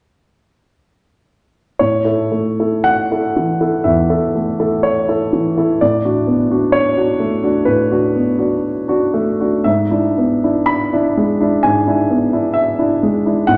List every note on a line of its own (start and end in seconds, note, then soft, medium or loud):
1.79 2.05 A2 soft
1.79 2.84 C#5 soft
2.04 2.29 E4 soft
2.04 2.29 A4 soft
2.32 2.74 A3 soft
2.59 3.06 E4 soft
2.59 3.06 A4 soft
2.84 3.84 F#5 medium
3.12 3.33 E4 soft
3.12 3.33 A4 soft
3.36 3.75 E3 soft
3.60 3.82 E4 soft
3.60 3.82 A4 soft
3.84 4.09 E2 soft
3.84 4.84 E5 soft
4.10 4.32 E4 soft
4.10 4.32 A4 soft
4.35 4.74 A3 soft
4.59 5.05 E4 soft
4.59 5.05 A4 soft
4.83 5.81 C#5 medium
5.08 5.31 E4 soft
5.08 5.31 A4 soft
5.33 5.72 E3 soft
5.58 5.79 E4 soft
5.58 5.79 A4 soft
5.81 6.05 A2 soft
5.81 6.75 D5 soft
6.05 6.27 D4 soft
6.05 6.27 F#4 soft
6.27 6.65 B3 soft
6.51 6.94 D4 soft
6.51 6.94 F#4 soft
6.72 7.67 C#5 medium
6.97 7.19 D4 soft
6.97 7.19 F#4 soft
7.20 7.58 A3 soft
7.43 7.65 D4 soft
7.43 7.66 F#4 soft
7.65 7.90 A2 soft
7.65 9.64 B4 soft
7.91 8.13 D4 soft
7.91 8.13 F#4 soft
8.16 8.54 B3 soft
8.39 8.84 D4 soft
8.39 8.84 F#4 soft
8.88 9.12 D4 soft
8.88 9.12 F#4 soft
9.14 9.56 A3 soft
9.40 9.63 D4 soft
9.40 9.64 F#4 soft
9.64 9.90 G#2 soft
9.64 10.67 E5 soft
9.91 10.15 D4 soft
9.91 10.14 E4 soft
10.18 10.58 B3 soft
10.44 10.89 D4 soft
10.44 10.89 E4 soft
10.66 11.62 B5 medium
10.93 11.14 D4 soft
10.93 11.14 E4 soft
11.17 11.54 G#3 soft
11.40 11.61 D4 soft
11.40 11.61 E4 soft
11.63 11.86 G#2 soft
11.63 12.55 G#5 medium
11.87 12.08 D4 soft
11.87 12.08 E4 soft
12.10 12.47 B3 soft
12.33 12.75 D4 soft
12.33 12.75 E4 soft
12.54 13.47 E5 medium
12.79 12.99 D4 soft
12.79 13.00 E4 soft
13.03 13.39 G#3 soft
13.26 13.46 D4 soft
13.26 13.46 E4 soft
13.47 13.57 A2 soft
13.47 13.57 F#5 medium